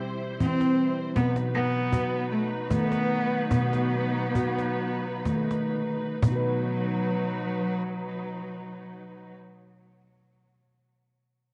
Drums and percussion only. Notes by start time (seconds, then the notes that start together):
0.40 cajon bass
0.61 cajon slap
1.16 cajon bass, cajon slap
1.36 cajon slap
1.92 cajon bass
2.70 cajon bass
2.92 cajon slap
3.51 cajon bass
3.73 cajon slap
4.35 cajon bass
4.59 cajon slap
5.25 cajon bass, cajon slap
5.51 cajon slap
6.22 cajon bass